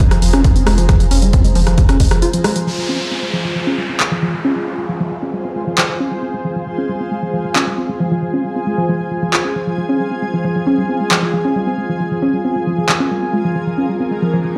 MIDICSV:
0, 0, Header, 1, 7, 480
1, 0, Start_track
1, 0, Key_signature, -4, "minor"
1, 0, Tempo, 444444
1, 962, Time_signature, 4, 2, 24, 8
1, 15744, End_track
2, 0, Start_track
2, 0, Title_t, "Ambient pad"
2, 0, Program_c, 0, 92
2, 0, Note_on_c, 0, 65, 80
2, 0, Note_on_c, 0, 68, 77
2, 0, Note_on_c, 0, 72, 69
2, 0, Note_on_c, 0, 82, 85
2, 2870, Note_off_c, 0, 65, 0
2, 2880, Note_off_c, 0, 72, 0
2, 2882, Note_off_c, 0, 68, 0
2, 2883, Note_on_c, 0, 65, 75
2, 2958, Note_on_c, 0, 68, 83
2, 3527, Note_off_c, 0, 82, 0
2, 3716, Note_on_c, 0, 72, 79
2, 4545, Note_on_c, 0, 80, 70
2, 12867, Note_on_c, 0, 70, 78
2, 13010, Note_off_c, 0, 72, 0
2, 15744, Note_off_c, 0, 65, 0
2, 15744, Note_off_c, 0, 68, 0
2, 15744, Note_off_c, 0, 70, 0
2, 15744, Note_off_c, 0, 80, 0
2, 15744, End_track
3, 0, Start_track
3, 0, Title_t, "Synth arpeggio sound"
3, 0, Program_c, 1, 84
3, 0, Note_on_c, 1, 53, 103
3, 106, Note_off_c, 1, 53, 0
3, 122, Note_on_c, 1, 53, 105
3, 191, Note_off_c, 1, 53, 0
3, 239, Note_on_c, 1, 53, 79
3, 282, Note_off_c, 1, 53, 0
3, 362, Note_on_c, 1, 61, 106
3, 430, Note_off_c, 1, 61, 0
3, 479, Note_on_c, 1, 55, 88
3, 550, Note_off_c, 1, 55, 0
3, 603, Note_on_c, 1, 60, 80
3, 671, Note_off_c, 1, 60, 0
3, 720, Note_on_c, 1, 56, 75
3, 791, Note_off_c, 1, 56, 0
3, 843, Note_on_c, 1, 53, 96
3, 945, Note_off_c, 1, 53, 0
3, 961, Note_on_c, 1, 53, 102
3, 1031, Note_off_c, 1, 53, 0
3, 1082, Note_on_c, 1, 53, 81
3, 1123, Note_off_c, 1, 53, 0
3, 1200, Note_on_c, 1, 61, 101
3, 1271, Note_off_c, 1, 61, 0
3, 1322, Note_on_c, 1, 55, 78
3, 1391, Note_off_c, 1, 55, 0
3, 1439, Note_on_c, 1, 60, 87
3, 1510, Note_off_c, 1, 60, 0
3, 1561, Note_on_c, 1, 56, 76
3, 1630, Note_off_c, 1, 56, 0
3, 1680, Note_on_c, 1, 53, 104
3, 1786, Note_off_c, 1, 53, 0
3, 1802, Note_on_c, 1, 53, 107
3, 1871, Note_off_c, 1, 53, 0
3, 1921, Note_on_c, 1, 53, 88
3, 1963, Note_off_c, 1, 53, 0
3, 2043, Note_on_c, 1, 61, 105
3, 2111, Note_off_c, 1, 61, 0
3, 2161, Note_on_c, 1, 56, 82
3, 2231, Note_off_c, 1, 56, 0
3, 2283, Note_on_c, 1, 53, 79
3, 2385, Note_off_c, 1, 53, 0
3, 2401, Note_on_c, 1, 65, 110
3, 2506, Note_off_c, 1, 65, 0
3, 2525, Note_on_c, 1, 53, 73
3, 2592, Note_off_c, 1, 53, 0
3, 2642, Note_on_c, 1, 56, 100
3, 2711, Note_off_c, 1, 56, 0
3, 2763, Note_on_c, 1, 53, 77
3, 2831, Note_off_c, 1, 53, 0
3, 2883, Note_on_c, 1, 53, 98
3, 2952, Note_off_c, 1, 53, 0
3, 3004, Note_on_c, 1, 53, 76
3, 3044, Note_off_c, 1, 53, 0
3, 3122, Note_on_c, 1, 61, 96
3, 3191, Note_off_c, 1, 61, 0
3, 3245, Note_on_c, 1, 55, 69
3, 3312, Note_off_c, 1, 55, 0
3, 3363, Note_on_c, 1, 60, 82
3, 3432, Note_off_c, 1, 60, 0
3, 3484, Note_on_c, 1, 56, 74
3, 3552, Note_off_c, 1, 56, 0
3, 3601, Note_on_c, 1, 53, 100
3, 3706, Note_off_c, 1, 53, 0
3, 3723, Note_on_c, 1, 53, 93
3, 3791, Note_off_c, 1, 53, 0
3, 3841, Note_on_c, 1, 53, 85
3, 3883, Note_off_c, 1, 53, 0
3, 3963, Note_on_c, 1, 61, 101
3, 4031, Note_off_c, 1, 61, 0
3, 4081, Note_on_c, 1, 55, 77
3, 4151, Note_off_c, 1, 55, 0
3, 4202, Note_on_c, 1, 60, 74
3, 4271, Note_off_c, 1, 60, 0
3, 4322, Note_on_c, 1, 56, 84
3, 4392, Note_off_c, 1, 56, 0
3, 4444, Note_on_c, 1, 53, 101
3, 4545, Note_off_c, 1, 53, 0
3, 4563, Note_on_c, 1, 53, 96
3, 4632, Note_off_c, 1, 53, 0
3, 4684, Note_on_c, 1, 53, 70
3, 4725, Note_off_c, 1, 53, 0
3, 4802, Note_on_c, 1, 61, 101
3, 4872, Note_off_c, 1, 61, 0
3, 4924, Note_on_c, 1, 55, 77
3, 4991, Note_off_c, 1, 55, 0
3, 5043, Note_on_c, 1, 60, 69
3, 5112, Note_off_c, 1, 60, 0
3, 5164, Note_on_c, 1, 56, 74
3, 5231, Note_off_c, 1, 56, 0
3, 5282, Note_on_c, 1, 53, 95
3, 5386, Note_off_c, 1, 53, 0
3, 5405, Note_on_c, 1, 53, 104
3, 5472, Note_off_c, 1, 53, 0
3, 5523, Note_on_c, 1, 53, 75
3, 5564, Note_off_c, 1, 53, 0
3, 5644, Note_on_c, 1, 61, 94
3, 5712, Note_off_c, 1, 61, 0
3, 5762, Note_on_c, 1, 55, 79
3, 5832, Note_off_c, 1, 55, 0
3, 5884, Note_on_c, 1, 60, 72
3, 5951, Note_off_c, 1, 60, 0
3, 6002, Note_on_c, 1, 56, 71
3, 6072, Note_off_c, 1, 56, 0
3, 6124, Note_on_c, 1, 53, 103
3, 6226, Note_off_c, 1, 53, 0
3, 6243, Note_on_c, 1, 53, 104
3, 6312, Note_off_c, 1, 53, 0
3, 6365, Note_on_c, 1, 53, 73
3, 6405, Note_off_c, 1, 53, 0
3, 6482, Note_on_c, 1, 61, 101
3, 6552, Note_off_c, 1, 61, 0
3, 6604, Note_on_c, 1, 55, 72
3, 6672, Note_off_c, 1, 55, 0
3, 6723, Note_on_c, 1, 60, 84
3, 6792, Note_off_c, 1, 60, 0
3, 6845, Note_on_c, 1, 56, 79
3, 6912, Note_off_c, 1, 56, 0
3, 6963, Note_on_c, 1, 53, 97
3, 7067, Note_off_c, 1, 53, 0
3, 7084, Note_on_c, 1, 53, 98
3, 7152, Note_off_c, 1, 53, 0
3, 7203, Note_on_c, 1, 53, 81
3, 7244, Note_off_c, 1, 53, 0
3, 7325, Note_on_c, 1, 61, 101
3, 7392, Note_off_c, 1, 61, 0
3, 7443, Note_on_c, 1, 55, 76
3, 7512, Note_off_c, 1, 55, 0
3, 7565, Note_on_c, 1, 60, 73
3, 7632, Note_off_c, 1, 60, 0
3, 7683, Note_on_c, 1, 56, 84
3, 7752, Note_off_c, 1, 56, 0
3, 7804, Note_on_c, 1, 53, 95
3, 7906, Note_off_c, 1, 53, 0
3, 7923, Note_on_c, 1, 53, 99
3, 7992, Note_off_c, 1, 53, 0
3, 8045, Note_on_c, 1, 53, 77
3, 8085, Note_off_c, 1, 53, 0
3, 8162, Note_on_c, 1, 61, 103
3, 8232, Note_off_c, 1, 61, 0
3, 8284, Note_on_c, 1, 55, 74
3, 8352, Note_off_c, 1, 55, 0
3, 8403, Note_on_c, 1, 60, 71
3, 8472, Note_off_c, 1, 60, 0
3, 8523, Note_on_c, 1, 56, 72
3, 8591, Note_off_c, 1, 56, 0
3, 8642, Note_on_c, 1, 53, 103
3, 8746, Note_off_c, 1, 53, 0
3, 8764, Note_on_c, 1, 53, 100
3, 8831, Note_off_c, 1, 53, 0
3, 8881, Note_on_c, 1, 53, 72
3, 8924, Note_off_c, 1, 53, 0
3, 9003, Note_on_c, 1, 61, 96
3, 9071, Note_off_c, 1, 61, 0
3, 9122, Note_on_c, 1, 55, 75
3, 9192, Note_off_c, 1, 55, 0
3, 9243, Note_on_c, 1, 60, 78
3, 9311, Note_off_c, 1, 60, 0
3, 9361, Note_on_c, 1, 56, 76
3, 9431, Note_off_c, 1, 56, 0
3, 9483, Note_on_c, 1, 53, 101
3, 9585, Note_off_c, 1, 53, 0
3, 9602, Note_on_c, 1, 53, 100
3, 9672, Note_off_c, 1, 53, 0
3, 9724, Note_on_c, 1, 53, 73
3, 9765, Note_off_c, 1, 53, 0
3, 9842, Note_on_c, 1, 53, 76
3, 9947, Note_off_c, 1, 53, 0
3, 9962, Note_on_c, 1, 53, 106
3, 10004, Note_off_c, 1, 53, 0
3, 10082, Note_on_c, 1, 65, 82
3, 10152, Note_off_c, 1, 65, 0
3, 10203, Note_on_c, 1, 61, 73
3, 10305, Note_off_c, 1, 61, 0
3, 10322, Note_on_c, 1, 53, 74
3, 10392, Note_off_c, 1, 53, 0
3, 10444, Note_on_c, 1, 53, 72
3, 10545, Note_off_c, 1, 53, 0
3, 10561, Note_on_c, 1, 53, 81
3, 10603, Note_off_c, 1, 53, 0
3, 10683, Note_on_c, 1, 61, 104
3, 10751, Note_off_c, 1, 61, 0
3, 10802, Note_on_c, 1, 55, 73
3, 10871, Note_off_c, 1, 55, 0
3, 10923, Note_on_c, 1, 60, 70
3, 10991, Note_off_c, 1, 60, 0
3, 11041, Note_on_c, 1, 56, 81
3, 11111, Note_off_c, 1, 56, 0
3, 11163, Note_on_c, 1, 53, 99
3, 11265, Note_off_c, 1, 53, 0
3, 11282, Note_on_c, 1, 53, 104
3, 11352, Note_off_c, 1, 53, 0
3, 11404, Note_on_c, 1, 53, 78
3, 11445, Note_off_c, 1, 53, 0
3, 11521, Note_on_c, 1, 61, 102
3, 11591, Note_off_c, 1, 61, 0
3, 11643, Note_on_c, 1, 55, 77
3, 11711, Note_off_c, 1, 55, 0
3, 11761, Note_on_c, 1, 60, 75
3, 11831, Note_off_c, 1, 60, 0
3, 11884, Note_on_c, 1, 56, 74
3, 11952, Note_off_c, 1, 56, 0
3, 12001, Note_on_c, 1, 53, 108
3, 12106, Note_off_c, 1, 53, 0
3, 12124, Note_on_c, 1, 53, 97
3, 12192, Note_off_c, 1, 53, 0
3, 12243, Note_on_c, 1, 53, 80
3, 12284, Note_off_c, 1, 53, 0
3, 12364, Note_on_c, 1, 61, 93
3, 12432, Note_off_c, 1, 61, 0
3, 12482, Note_on_c, 1, 55, 80
3, 12551, Note_off_c, 1, 55, 0
3, 12602, Note_on_c, 1, 60, 76
3, 12671, Note_off_c, 1, 60, 0
3, 12721, Note_on_c, 1, 56, 70
3, 12791, Note_off_c, 1, 56, 0
3, 12844, Note_on_c, 1, 53, 99
3, 12946, Note_off_c, 1, 53, 0
3, 12962, Note_on_c, 1, 53, 97
3, 13032, Note_off_c, 1, 53, 0
3, 13084, Note_on_c, 1, 53, 76
3, 13124, Note_off_c, 1, 53, 0
3, 13202, Note_on_c, 1, 61, 105
3, 13271, Note_off_c, 1, 61, 0
3, 13323, Note_on_c, 1, 55, 72
3, 13391, Note_off_c, 1, 55, 0
3, 13442, Note_on_c, 1, 60, 82
3, 13512, Note_off_c, 1, 60, 0
3, 13563, Note_on_c, 1, 56, 73
3, 13631, Note_off_c, 1, 56, 0
3, 13683, Note_on_c, 1, 53, 100
3, 13787, Note_off_c, 1, 53, 0
3, 13804, Note_on_c, 1, 53, 100
3, 13872, Note_off_c, 1, 53, 0
3, 13923, Note_on_c, 1, 53, 83
3, 13964, Note_off_c, 1, 53, 0
3, 14043, Note_on_c, 1, 61, 98
3, 14111, Note_off_c, 1, 61, 0
3, 14162, Note_on_c, 1, 55, 74
3, 14231, Note_off_c, 1, 55, 0
3, 14284, Note_on_c, 1, 60, 72
3, 14351, Note_off_c, 1, 60, 0
3, 14400, Note_on_c, 1, 56, 84
3, 14471, Note_off_c, 1, 56, 0
3, 14524, Note_on_c, 1, 53, 99
3, 14625, Note_off_c, 1, 53, 0
3, 14641, Note_on_c, 1, 53, 95
3, 14711, Note_off_c, 1, 53, 0
3, 14764, Note_on_c, 1, 53, 74
3, 14804, Note_off_c, 1, 53, 0
3, 14881, Note_on_c, 1, 61, 94
3, 14951, Note_off_c, 1, 61, 0
3, 15003, Note_on_c, 1, 55, 76
3, 15071, Note_off_c, 1, 55, 0
3, 15122, Note_on_c, 1, 60, 76
3, 15191, Note_off_c, 1, 60, 0
3, 15242, Note_on_c, 1, 56, 74
3, 15310, Note_off_c, 1, 56, 0
3, 15361, Note_on_c, 1, 53, 100
3, 15466, Note_off_c, 1, 53, 0
3, 15482, Note_on_c, 1, 53, 101
3, 15551, Note_off_c, 1, 53, 0
3, 15601, Note_on_c, 1, 53, 72
3, 15643, Note_off_c, 1, 53, 0
3, 15744, End_track
4, 0, Start_track
4, 0, Title_t, "Sub bass"
4, 0, Program_c, 2, 38
4, 241, Note_on_c, 2, 29, 102
4, 357, Note_off_c, 2, 29, 0
4, 363, Note_on_c, 2, 29, 78
4, 479, Note_off_c, 2, 29, 0
4, 721, Note_on_c, 2, 29, 95
4, 837, Note_off_c, 2, 29, 0
4, 843, Note_on_c, 2, 29, 87
4, 959, Note_off_c, 2, 29, 0
4, 1201, Note_on_c, 2, 29, 101
4, 1316, Note_off_c, 2, 29, 0
4, 1323, Note_on_c, 2, 29, 82
4, 1439, Note_off_c, 2, 29, 0
4, 1681, Note_on_c, 2, 29, 99
4, 1796, Note_off_c, 2, 29, 0
4, 1803, Note_on_c, 2, 29, 86
4, 1919, Note_off_c, 2, 29, 0
4, 2161, Note_on_c, 2, 29, 108
4, 2277, Note_off_c, 2, 29, 0
4, 2284, Note_on_c, 2, 29, 85
4, 2400, Note_off_c, 2, 29, 0
4, 15744, End_track
5, 0, Start_track
5, 0, Title_t, "Downlifter"
5, 0, Program_c, 3, 103
5, 2882, Note_on_c, 3, 60, 67
5, 6722, Note_off_c, 3, 60, 0
5, 15744, End_track
6, 0, Start_track
6, 0, Title_t, "Riser"
6, 0, Program_c, 4, 103
6, 14402, Note_on_c, 4, 60, 76
6, 15744, Note_off_c, 4, 60, 0
6, 15744, End_track
7, 0, Start_track
7, 0, Title_t, "Drums"
7, 1, Note_on_c, 9, 36, 112
7, 109, Note_off_c, 9, 36, 0
7, 121, Note_on_c, 9, 37, 80
7, 121, Note_on_c, 9, 42, 65
7, 229, Note_off_c, 9, 37, 0
7, 229, Note_off_c, 9, 42, 0
7, 239, Note_on_c, 9, 46, 106
7, 347, Note_off_c, 9, 46, 0
7, 361, Note_on_c, 9, 37, 87
7, 361, Note_on_c, 9, 42, 61
7, 469, Note_off_c, 9, 37, 0
7, 469, Note_off_c, 9, 42, 0
7, 479, Note_on_c, 9, 42, 66
7, 480, Note_on_c, 9, 36, 114
7, 587, Note_off_c, 9, 42, 0
7, 588, Note_off_c, 9, 36, 0
7, 601, Note_on_c, 9, 42, 68
7, 709, Note_off_c, 9, 42, 0
7, 719, Note_on_c, 9, 37, 95
7, 719, Note_on_c, 9, 46, 89
7, 827, Note_off_c, 9, 37, 0
7, 827, Note_off_c, 9, 46, 0
7, 841, Note_on_c, 9, 42, 61
7, 949, Note_off_c, 9, 42, 0
7, 959, Note_on_c, 9, 37, 90
7, 959, Note_on_c, 9, 42, 68
7, 960, Note_on_c, 9, 36, 119
7, 1067, Note_off_c, 9, 37, 0
7, 1067, Note_off_c, 9, 42, 0
7, 1068, Note_off_c, 9, 36, 0
7, 1081, Note_on_c, 9, 42, 70
7, 1189, Note_off_c, 9, 42, 0
7, 1199, Note_on_c, 9, 46, 103
7, 1307, Note_off_c, 9, 46, 0
7, 1320, Note_on_c, 9, 42, 67
7, 1428, Note_off_c, 9, 42, 0
7, 1439, Note_on_c, 9, 42, 67
7, 1441, Note_on_c, 9, 36, 118
7, 1547, Note_off_c, 9, 42, 0
7, 1549, Note_off_c, 9, 36, 0
7, 1560, Note_on_c, 9, 42, 66
7, 1668, Note_off_c, 9, 42, 0
7, 1678, Note_on_c, 9, 46, 89
7, 1786, Note_off_c, 9, 46, 0
7, 1800, Note_on_c, 9, 37, 76
7, 1800, Note_on_c, 9, 42, 59
7, 1908, Note_off_c, 9, 37, 0
7, 1908, Note_off_c, 9, 42, 0
7, 1919, Note_on_c, 9, 42, 68
7, 1921, Note_on_c, 9, 36, 118
7, 2027, Note_off_c, 9, 42, 0
7, 2029, Note_off_c, 9, 36, 0
7, 2040, Note_on_c, 9, 37, 80
7, 2040, Note_on_c, 9, 42, 70
7, 2148, Note_off_c, 9, 37, 0
7, 2148, Note_off_c, 9, 42, 0
7, 2159, Note_on_c, 9, 46, 107
7, 2161, Note_on_c, 9, 36, 58
7, 2267, Note_off_c, 9, 46, 0
7, 2269, Note_off_c, 9, 36, 0
7, 2281, Note_on_c, 9, 37, 85
7, 2281, Note_on_c, 9, 42, 61
7, 2389, Note_off_c, 9, 37, 0
7, 2389, Note_off_c, 9, 42, 0
7, 2400, Note_on_c, 9, 42, 71
7, 2508, Note_off_c, 9, 42, 0
7, 2521, Note_on_c, 9, 42, 72
7, 2629, Note_off_c, 9, 42, 0
7, 2639, Note_on_c, 9, 37, 92
7, 2639, Note_on_c, 9, 46, 93
7, 2747, Note_off_c, 9, 37, 0
7, 2747, Note_off_c, 9, 46, 0
7, 2762, Note_on_c, 9, 42, 69
7, 2870, Note_off_c, 9, 42, 0
7, 4321, Note_on_c, 9, 39, 120
7, 4429, Note_off_c, 9, 39, 0
7, 6242, Note_on_c, 9, 39, 115
7, 6350, Note_off_c, 9, 39, 0
7, 8161, Note_on_c, 9, 39, 112
7, 8269, Note_off_c, 9, 39, 0
7, 10081, Note_on_c, 9, 39, 114
7, 10189, Note_off_c, 9, 39, 0
7, 12001, Note_on_c, 9, 39, 116
7, 12109, Note_off_c, 9, 39, 0
7, 13920, Note_on_c, 9, 39, 114
7, 14028, Note_off_c, 9, 39, 0
7, 15744, End_track
0, 0, End_of_file